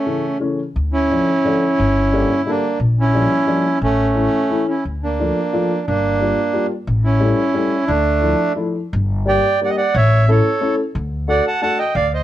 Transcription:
Already playing: A3 C#4
0.06 C#3 E3 A3 C#4
0.40 C#3 E3 A3 C#4
0.76 D2
0.93 C#4 E4
1.11 D3 F3 A3 D4
1.45 D3 F3 A3 D4
1.79 G1
2.12 D3 G3 A#3 D4
2.45 D3 G3 A#3 D4
2.79 A#1
3.00 C#4 E4
3.13 F3 G3 A#3 D4
3.46 F3 G3 A#3 D4
3.81 A1 A3 C#4
4.15 E3 A3 C#4 E4
4.49 E3 A3 C#4 E4
4.68 C#4 E4
4.85 D2
5.03 A#3 D4
5.19 F3 A3 D4 F4
5.53 F3 A3 D4 F4
5.87 G1 A#3 D4
6.21 G3 A#3 D4 F4
6.53 G3 A#3 D4 F4
6.87 A1
7.04 C#4 E4
7.20 G3 A3 C#4 E4
7.54 G3 A3 C#4 E4
7.88 D2 A3 D4
8.22 F3 A3 D4 E4
8.56 F3 A3 D4 E4
8.93 G1
9.26 G3 A#3 D4 G4 D5 G5
9.61 G3 A#3 D4 G4 D5
9.66 D#5 F#5
9.77 D5 F#5
9.95 A1 C#5 E5
10.28 A3 C#4 E4 A4 C#5
10.61 A3 C#4 E4 A4
10.95 D2
11.28 A3 D4 F#4 A4 D5 F#5
11.47 F#5 A5
11.61 A3 D4 F#4 A4 F#5 A5
11.78 D#5 G5
11.95 D2 D5 F5
12.14 C5 D#5

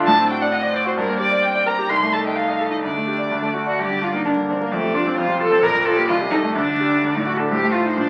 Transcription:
Already playing: D4
0.07 A2 A5
0.19 C4
0.30 F#4 G5
0.42 D5 F#5
0.51 C4 D#5 F#5
0.63 D5
0.74 C5 D5
0.86 F#4 C5
0.97 G2 A#4
1.09 A#3
1.19 G4 D5
1.31 D5
1.43 G5
1.55 D5
1.66 A#4 A#5
1.79 G4
1.89 C2 D#4 C6
2.03 A3
2.13 A4 A5
2.25 D#5 G5
2.35 F5 A5
2.48 D#5
2.60 A4
2.71 D#4 D#5
2.82 D2 D4 D5
2.97 A3
3.07 G4
3.18 D5
3.31 D2 D4
3.42 A3
3.54 F#4
3.66 D5
3.79 G2 G4 D5
3.89 D3
4.01 D4 F4
4.13 A#3 D#4
4.25 G2 D4 A#4
4.36 D3
4.49 C4 D4
4.61 A#3
4.72 F2 A3 D5
4.84 C3
4.94 D4 F4
5.07 C4
5.16 F2 F4 C5
5.28 C3
5.40 F4 A4
5.51 C4
5.61 A#1 A#4 D5
5.74 F2
5.85 F4 A4
5.97 A#3 G4
6.08 C2 F4 D#5
6.21 C3
6.30 D#4 A4
6.43 A3
6.54 D2 D4 D5
6.69 D3
6.80 G4
6.92 D4
7.04 D2
7.13 A2 D#4
7.26 F#4
7.38 D4 A4
7.50 A2 G4 C5
7.63 A3
7.73 F4
7.85 D#4
7.96 A#2 D4

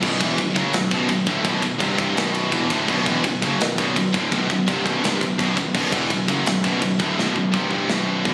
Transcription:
0.01 B0 B1 F#2 B2, kick, crash
0.20 E1 E2 B2 E3, kick, ride
0.37 B0 B1 F#2, kick, ride
0.55 F#1 F#2 C#3 F#3, kick, ride
0.71 B0 B1 F#2, snare, ride
0.91 B0 B1 F#2 B2, kick, ride
1.09 B0 B1 F#2, kick, ride
1.26 D1 D2 A2 D3, kick, ride
1.44 B0 B1 F#2 B2, kick, ride
1.62 B0 B1 F#2, kick, ride
1.79 C1 C2 G2 C3, kick, ride
1.98 C1 C2 G2 C3, kick, ride
2.15 B0 B1 F#2 B2, snare, ride
2.35 ride
2.50 E1 E2 B2 E3, kick, ride
2.69 D1 D2 A2 D3, kick, ride
2.88 B0 B1 F#2 B2, kick, crash
3.05 E1 E2 B2 E3, kick, ride
3.23 B0 B1 F#2, kick, ride
3.42 F#1 F#2 C#3 F#3, kick, ride
3.60 B0 B1 F#2, snare, ride
3.77 B0 B1 F#2 B2, kick, ride
3.95 B0 B1 F#2, kick, ride
4.13 D1 D2 A2 D3, kick, ride
4.31 B0 B1 F#2 B2, kick, ride
4.49 B0 B1 F#2, kick, ride
4.66 C1 C2 G2 C3, kick, ride
4.83 B0 B1 F#2 B2, kick, ride
5.02 C1 C2 G2 C3, snare, ride
5.21 B0 B1 F#2, kick, ride
5.38 B0 B1 F#2 B2, kick, ride
5.57 B0 B1 F#2, kick, ride
5.74 B0 B1 F#2 B2, kick, crash
5.92 E1 E2 B2 E3, kick, ride
6.10 B0 B1 F#2, kick, ride
6.28 F#1 F#2 C#3 F#3, kick, ride
6.46 B0 B1 F#2, snare, ride
6.63 B0 B1 F#2 B2, kick, ride
6.81 B0 B1 F#2, kick, ride
6.99 D1 D2 A2 D3, kick, ride
7.17 B0 B1 F#2 B2, snare
7.35 B0 B1 F#2, kick
7.52 C1 C2 G2 C3, kick
7.69 C1 C2 G2, mid tom
7.73 C3
7.88 B0 B1 F#2 B2, snare
8.25 E1 E2 B2 E3, kick

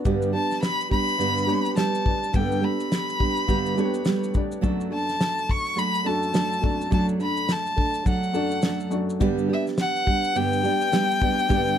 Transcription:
0.04 G2 D3 G3 B3 D4 G4 D5, kick, shaker
0.22 shaker
0.33 G3 B3 D4 G4 A5
0.51 snare, shaker
0.63 B5, snare, shaker
0.81 shaker
0.90 G3 B3 D4 G4 B5, kick
1.08 shaker
1.18 G2 D3 G3 B3 D4 G4, shaker
1.38 shaker
1.47 G3 B3 D4 G4 C#5, shaker
1.65 shaker
1.75 G3 B3 D4 G4 A5, snare, shaker
1.95 shaker
2.06 B3 D4 G4 D5, kick
2.24 shaker
2.33 G2 D3 G3 B3 D4 G4 G5, kick, shaker
2.37 G4 A4
2.52 shaker
2.62 G3 B3 D4 G4 B5
2.80 shaker
2.92 snare, shaker
3.10 shaker
3.20 G3 B3 D4 G4, kick
3.37 shaker
3.47 G2 D3 G3 B3 D4 G4, kick, shaker
3.66 shaker
3.76 G3 A3 B3 D4 G4 C#5, shaker
3.84 B3
3.94 shaker
4.05 G3 B3 D4 G4, snare, shaker
4.24 shaker
4.34 B3 D4 G4 D5, kick, shaker
4.52 shaker
4.61 F#2 F#3 A3 D4 F#4 A4 D5, kick, shaker
4.81 shaker
4.91 A3 D4 A4 A5
5.09 snare, shaker
5.20 snare, shaker
5.39 shaker
5.49 C#6, kick
5.66 shaker
5.76 F#3 A3 D4 A4 B5, shaker
5.94 shaker
6.04 F#2 A3 D4 F#4 A4 A5
6.23 shaker
6.32 F#3 A3 D4 A4, snare, shaker
6.53 shaker
6.62 F#2 A3 D4 F#4 A4 D5, kick
6.81 shaker
6.91 F#2 F#3 A3 D4 F#4 A4 D5 A5, kick, shaker
7.09 shaker
7.19 A3 D4 A4 B5, shaker
7.37 shaker
7.49 A5, snare, shaker
7.66 shaker
7.76 A3 D4 A4, kick
7.94 shaker
8.05 F#3 A3 D4 A4, kick, shaker
8.09 F#5
8.23 shaker
8.33 F#2 A3 D4 F#4 A4 D5, shaker
8.51 shaker
8.62 F#3 A3 D4 A4, snare, shaker
8.80 shaker
8.90 F#2 A3 D4 F#4 D5, shaker
9.10 shaker
9.19 G2 D3 G3 B3 D4 G4 D5, kick, shaker
9.38 shaker
9.49 G3 B3 D4 G4 E5
9.67 snare, shaker
9.78 F#5, snare, shaker
9.96 shaker
10.06 G3 B3 D4 G4, kick
10.24 shaker
10.35 G2 D3 G3 B3 D4 G4 G5, shaker
10.53 shaker
10.63 G3 B3 D4 G4 D5, shaker
10.81 shaker
10.92 G3 B3 D4 G4, snare, shaker
11.11 shaker
11.21 G3 B3 D4 G4 D5, kick
11.39 shaker
11.49 G2 D3 G3 B3 D4 G4 D5, kick, shaker
11.67 shaker

